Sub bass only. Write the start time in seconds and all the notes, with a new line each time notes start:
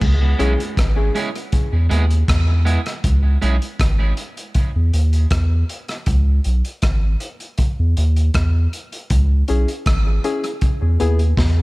0.02 C#2
0.40 B1
0.78 G#1
1.73 E2
1.91 D#2
2.29 E2
3.05 C#2
3.43 B1
3.80 G#1
4.76 E2
4.94 D#2
5.31 E2
6.08 C#2
6.46 B1
6.83 G#1
7.80 E2
7.98 D#2
8.35 E2
9.11 C#2
9.50 B1
9.87 G#1
10.82 E2
11.02 D#2
11.38 E2